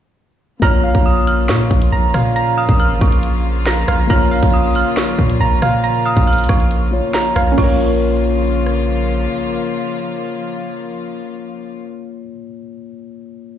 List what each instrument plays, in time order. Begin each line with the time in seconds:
0.60 808-style bass A#1, string section C#3 F3 A#3 F4, tine electric piano A#3 F4, synth pluck A#5, synth bell F6, kick, closed hi-hat
0.65 tine electric piano C#5
0.84 synth pluck F5
0.95 808-style bass A#1, kick, closed hi-hat
1.06 synth bell D#6
1.27 synth bell F6, closed hi-hat
1.49 808-style bass A#2, synth bell C#6, snare, closed hi-hat
1.71 808-style bass A#1, kick, closed hi-hat
1.82 closed hi-hat
1.92 808-style bass A#1, synth pluck A#5
2.14 808-style bass A#2, synth pluck F5, cross-stick, closed hi-hat
2.36 synth pluck A#5, closed hi-hat
2.58 synth pluck F5, synth bell D#6
2.69 808-style bass A#1, kick, closed hi-hat
2.80 synth bell F6, closed hi-hat
2.90 808-style bass G#1
3.01 808-style bass A#1, synth bell C#6, kick, closed hi-hat
3.12 closed hi-hat
3.23 closed hi-hat
3.66 synth pluck A#5, snare
3.88 808-style bass A#1, synth pluck F5, cross-stick, closed hi-hat
4.07 808-style bass A#1, tine electric piano A#3 F4, synth pluck A#5, synth bell F6, kick, closed hi-hat
4.12 tine electric piano C#5
4.31 synth pluck F5
4.43 808-style bass A#1, kick, closed hi-hat
4.54 synth bell D#6
4.75 synth bell F6, closed hi-hat
4.97 synth bell C#6, snare, closed hi-hat
5.19 808-style bass A#2, kick, closed hi-hat
5.30 closed hi-hat
5.40 808-style bass A#1, synth pluck A#5
5.62 808-style bass A#2, synth pluck F5, cross-stick, closed hi-hat
5.84 synth pluck A#5, closed hi-hat
6.05 synth pluck F5, synth bell D#6
6.17 808-style bass A#1, kick, closed hi-hat
6.27 synth bell F6, closed hi-hat
6.33 closed hi-hat
6.38 closed hi-hat
6.44 closed hi-hat
6.49 808-style bass A#1, synth bell C#6, kick, cross-stick, closed hi-hat
6.60 closed hi-hat
6.71 closed hi-hat
6.91 tine electric piano A#3 F4 C#5
7.14 synth pluck A#5, snare
7.36 808-style bass A#1, synth pluck F5, cross-stick, closed hi-hat
7.52 tine electric piano A#3, synth pluck C#4
7.58 808-style bass A#1, string section C#3 F3 A#3 F4, synth pluck F4, tine electric piano F4, synth bell C#6, kick, crash
7.62 synth pluck A#4, tine electric piano C#5
8.66 cross-stick